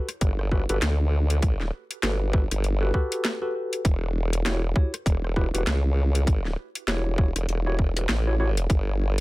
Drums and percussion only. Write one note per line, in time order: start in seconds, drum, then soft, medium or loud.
0.09 cross-stick medium
0.09 closed hi-hat medium
0.21 kick loud
0.21 closed hi-hat soft
0.39 cross-stick medium
0.52 kick medium
0.52 cross-stick medium
0.69 closed hi-hat medium
0.82 snare loud
0.82 closed hi-hat medium
1.30 closed hi-hat medium
1.42 kick loud
1.42 closed hi-hat medium
1.61 snare soft
1.91 closed hi-hat medium
2.03 snare loud
2.03 closed hi-hat medium
2.33 kick loud
2.51 cross-stick medium
2.51 closed hi-hat medium
2.64 closed hi-hat soft
2.94 kick medium
3.12 closed hi-hat medium
3.25 snare loud
3.25 closed hi-hat medium
3.73 closed hi-hat medium
3.85 kick loud
3.85 closed hi-hat medium
4.33 closed hi-hat medium
4.46 snare loud
4.46 closed hi-hat soft
4.76 kick loud
4.94 cross-stick medium
4.94 closed hi-hat medium
5.06 kick loud
5.06 closed hi-hat soft
5.24 cross-stick medium
5.36 kick medium
5.36 cross-stick soft
5.55 closed hi-hat medium
5.67 snare loud
5.67 closed hi-hat medium
6.15 closed hi-hat medium
6.27 kick loud
6.27 closed hi-hat medium
6.45 snare soft
6.75 closed hi-hat medium
6.88 snare loud
6.88 closed hi-hat soft
7.18 kick loud
7.36 cross-stick medium
7.36 closed hi-hat medium
7.49 closed hi-hat soft
7.79 kick medium
7.97 closed hi-hat medium
8.09 snare loud
8.57 closed hi-hat medium
8.70 kick loud
8.70 closed hi-hat soft